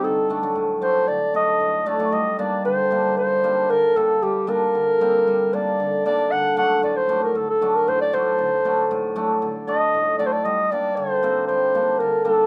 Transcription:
0.04 D3 A4
0.30 A3 D4
0.43 F#3 A3 D4
0.55 A2
0.81 F#3 A3 D4 C5
1.08 D3 D5
1.34 F#3 A3 D4 D#5
1.60 A2
1.86 A3 D4 D5
1.99 F#3 A3 D4
2.12 G3 D#5
2.38 G3 A#3 D4 D5
2.65 D3 C5
2.91 G3 A#3 D4
3.17 G3 C5
3.44 G3 A#3 D4
3.70 D3 A#4
3.96 G3 A#3 D4 A4
4.22 G3 G4
4.47 G3 A#3 D4 A#4
4.75 D3
5.01 G3 A#3 C4
5.27 G3
5.53 G3 A#3 D4 D5
5.80 D3
6.05 G3 A#3 D4 D5
6.31 D3 F#5
6.56 F#3 A3 D4 F#5
6.83 A2 D5
6.96 C5
7.09 F#3 A3 D4
7.23 A#4
7.35 D3 A4
7.49 A4
7.62 F#3 A3 D4
7.75 A#4
7.88 A2 C5
8.01 D5
8.13 F#3 A3 D4 C5
8.38 D3
8.65 F#3 A3 D4
8.91 A2
9.16 F#3 A3 D4
9.42 D3
9.67 F#3 A3 D4 D#5
9.94 A2
10.18 F#3 A3 D4 D5
10.26 C5
10.32 D5
10.45 G3 D#5
10.71 G3 A#3 D4 D5
10.96 D3 C#5
11.13 C5
11.23 G3 A#3 C4
11.47 G3 C5
11.75 G3 A#3 D4
11.99 D3 A#4
12.24 G3 A#3 D4 A4

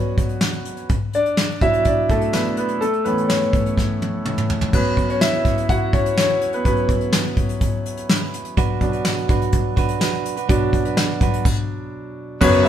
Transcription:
Already playing: F#3 B3 C#4 F#4 B4 C#5 F#5
0.18 kick, closed hi-hat
0.29 closed hi-hat
0.41 snare
0.65 closed hi-hat
0.77 closed hi-hat
0.89 kick, closed hi-hat
1.13 D4 D5, closed hi-hat
1.26 closed hi-hat
1.37 snare
1.61 B2 F#3 D4 E4 E5, kick, closed hi-hat
1.73 closed hi-hat
1.85 D4 D5, kick, closed hi-hat
2.09 A3 A4, kick, closed hi-hat
2.21 closed hi-hat
2.33 B3 B4, snare
2.45 closed hi-hat
2.57 B3 B4, closed hi-hat
2.68 closed hi-hat
2.81 A3 A4, closed hi-hat
2.93 closed hi-hat
3.05 A2 E3 B3 C#4 B4, closed hi-hat
3.18 closed hi-hat
3.28 C#4 C#5, snare
3.53 kick, closed hi-hat
3.66 closed hi-hat
3.78 kick, snare
4.02 high tom
4.25 A2 E3 C#4, mid tom
4.38 mid tom
4.50 floor tom
4.61 floor tom
4.73 F#3 B3 C#4 B4, kick, crash
4.97 kick, closed hi-hat
5.10 C#4 C#5, closed hi-hat
5.21 E4 E5, snare
5.34 closed hi-hat
5.45 kick, snare, closed hi-hat
5.58 closed hi-hat
5.69 F#4 F#5, kick, closed hi-hat
5.93 C#4 C#5, kick, closed hi-hat
6.06 closed hi-hat
6.17 C#4 C#5, snare
6.41 closed hi-hat
6.53 B3 B4, closed hi-hat
6.65 F#3 B3 C#4 B4, kick, closed hi-hat
6.77 closed hi-hat
6.89 kick, closed hi-hat
7.01 closed hi-hat
7.13 snare
7.37 kick, closed hi-hat
7.49 closed hi-hat
7.61 kick, closed hi-hat
7.86 closed hi-hat
7.97 closed hi-hat
8.09 snare
8.34 closed hi-hat
8.45 closed hi-hat
8.57 B2 F#3 D4 F#4 B4, kick, closed hi-hat
8.81 B2 F#3 D4, kick, closed hi-hat
8.92 D4 F#4 B4, closed hi-hat
9.05 snare
9.18 closed hi-hat
9.29 F#3 D4 F#4 B4, kick, closed hi-hat
9.41 closed hi-hat
9.52 kick, closed hi-hat
9.76 F#3 D4 F#4 B4, kick, closed hi-hat
9.88 closed hi-hat
10.00 F#3 D4 F#4 B4, snare
10.13 closed hi-hat
10.25 closed hi-hat
10.37 D4 F#4 B4, closed hi-hat
10.48 B2 F#3 D4 F#4 B4, kick, closed hi-hat
10.73 kick, closed hi-hat
10.85 D4 F#4 B4, closed hi-hat
10.97 snare
11.21 F#3 D4 F#4 B4, kick, closed hi-hat
11.34 closed hi-hat
11.45 kick, crash
12.41 F#1 F#2 C#3 F#3 B3 C#4 F#4 B4 C#5, kick, crash
12.53 closed hi-hat
12.64 B3 C#4 F#4 B4 E5, closed hi-hat

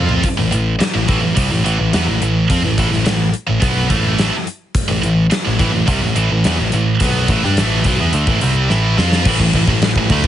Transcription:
Already playing: F2 F3 C4 F4
0.09 floor tom
0.23 kick, closed hi-hat
0.37 A1 A2 E3
0.51 A1 A2 E3, closed hi-hat
0.79 muted distorted electric guitar stroke, muted picked electric bass stroke, snare, closed hi-hat
0.94 A1 A2 E3
1.08 A1 A2 E3, kick, closed hi-hat
1.22 A1 A2 E3
1.35 C2 C3 G3, kick, closed hi-hat
1.51 A1 A2 E3
1.64 A1 A2 E3, closed hi-hat
1.78 A1 A2 E3
1.93 E2 E3 B3, snare, closed hi-hat
2.07 A1 A2 E3
2.22 A1 A2 E3, closed hi-hat
2.50 F2 F3 C4, kick, closed hi-hat
2.63 A1 A2 E3
2.78 A1 A2 E3, kick, closed hi-hat
2.91 A1 A2 E3, snare
3.05 A1 A2 E3, snare, closed hi-hat
3.34 closed hi-hat
3.47 A1 A2 E3
3.60 B1 B2 F#3 B3, kick, closed hi-hat
3.89 A1 A2 E3 A3, kick, closed hi-hat
4.19 snare, closed hi-hat
4.33 muted distorted electric guitar stroke, muted picked electric bass stroke
4.47 closed hi-hat
4.75 kick, closed hi-hat
4.88 A1 A2 E3
5.02 A1 A2 E3, closed hi-hat
5.31 muted distorted electric guitar stroke, snare, closed hi-hat
5.45 A1 A2 E3
5.59 A1 A2 E3, kick, closed hi-hat
5.73 A1 A2 E3
5.87 C2 C3 G3, kick, closed hi-hat
6.02 A1 A2 E3
6.16 A1 A2 E3, closed hi-hat
6.31 A1 A2 E3
6.44 E2 E3 B3, snare, closed hi-hat
6.59 A1 A2 E3
6.72 A1 A2 E3, closed hi-hat
7.00 B1 B2 F#3 B3, kick, closed hi-hat
7.28 A1 A2 E3, kick, closed hi-hat
7.44 G2 G3 D4, snare
7.57 A1 A2 E3 A3, snare, closed hi-hat
7.84 B1 B2 F#3, kick, closed hi-hat
8.00 E2 E3 B3
8.13 D2 D3 A3, closed hi-hat
8.27 A1 A2 E3, kick
8.41 C2 C3 G3 C4, closed hi-hat
8.70 A1 A2 E3 A3, snare
8.97 F2 F3 C4 F4, snare
9.12 snare
9.25 A1 A2 E3, kick, crash
9.39 A1 A2 E3, kick
9.53 A1 A2 E3, kick, ride
9.67 A1 A2 E3, kick
9.82 snare, ride
9.96 A1 A2 E3, kick
10.10 D2 D3 A3, kick, ride
10.24 A1, kick

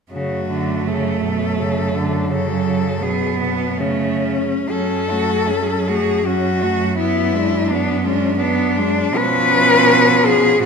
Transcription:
0.12 F#2 C#3 A3 F#4
0.50 D3
0.88 C#3 A4
1.24 B2
1.60 C#3
1.96 D3
2.30 C#3 F#3 A4
3.02 B2 B3 G#4
3.40 B2 B3
3.79 C#3 A3 C#4
4.69 F#2 F#3 C#4 A4
5.10 A3 F#4
5.49 F#3 C#4
5.88 A3 F#4 G#4
6.25 F#3 C#4 F#4
6.62 A3 F#4
6.98 B3 E4
7.35 G#3 D4
7.70 B3 D4
8.04 G#3 C#4 D4
8.38 B3 D4
8.77 G#3 D4
9.16 B2 F3 C#4 B4
10.26 G#4

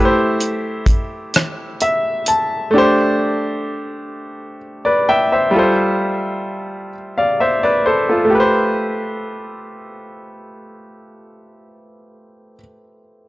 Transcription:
Already playing: A3 E4 G4 E5
0.05 C5
0.40 closed hi-hat
0.86 kick, closed hi-hat
1.34 cross-stick, closed hi-hat
1.81 E5, closed hi-hat
2.26 A5, closed hi-hat
2.71 A3 D4
2.76 G4 C5
4.85 B4 D5
5.09 E5 G5
5.32 C5 E5
5.51 G3 F4
5.56 A4 C5
7.18 D5 F5
7.40 C5 E5
7.63 B4 D5
7.86 A4 C5
8.09 F4 A4
8.25 A3
8.30 G4
8.35 B4
8.40 C5

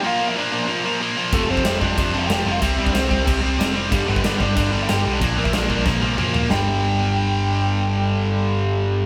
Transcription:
0.03 A#2 F3 A#3 F4 F5
0.19 A#2 F3 A#3
0.27 E4 E5
0.35 A#2 F3 A#3 D4 D5
0.52 A#2 F3 A#3
0.68 A#2 F3 A#3
0.84 A#2 F3 A#3
1.01 A#2 F3 A#3
1.17 A#2 F3 A#3
1.32 F1 F2 C3 F3 A3 A4, kick, crash
1.49 F1 F2 C3 F3 C4 C5
1.57 kick
1.65 F1 F2 C3 F3, snare, crash
1.80 F1 F2 C3 F3 D4 D5, kick
1.97 F1 F2 C3 F3, kick, crash
2.13 F1 F2 C3 F3
2.19 E4 E5
2.27 F1 F2 C3 G4 G5, snare, crash
2.31 F3
2.46 F1 F2 C3 F3
2.52 F4 F5
2.60 C2 C3 G3 C4 E4 E5, kick, crash
2.77 C2 C3 G3 C4
2.84 D4 D5, kick
2.93 C2 C3 G3 C4 C5, snare, crash
3.09 C2 C3 G3 C4, kick
3.25 C2 C3 G3 C4, kick, crash
3.41 C2 C3 G3 C4
3.58 F1 C3 G3 C4, snare, crash
3.74 C3 G3 C4
3.91 G1 G2 D3 G3 G4, kick, crash
4.06 G1 G2 D3 G3 B3 B4
4.16 kick
4.23 G1 G2 D3 G3, snare, crash
4.39 G1 G2 D3 G3 D4 D5, kick
4.55 G1 G2 D3 G3, kick, crash
4.72 G1 G2 D3 G3
4.83 E4 E5
4.88 G1 G2 D3 G3 G4 G5, snare, crash
5.05 B1 G2 D3 G3
5.13 D4 D5
5.20 A#1 A#2 F3 A#3 D4 D5, kick, crash
5.36 A#1 A#2 F3 A#3
5.44 E4 E5, kick
5.52 A#1 A#2 F3 A#3 D4 D5, snare, crash
5.69 A#1 A#2 F3 A#3, kick
5.85 A#1 A#2 F3 A#3, kick, snare
6.01 A#1 A#2 F3 A#3, high tom
6.17 A#2 F3 A#3, mid tom
6.34 A#2 F3 A#3, floor tom
6.49 G1 G2 D3 G3 G5, snare

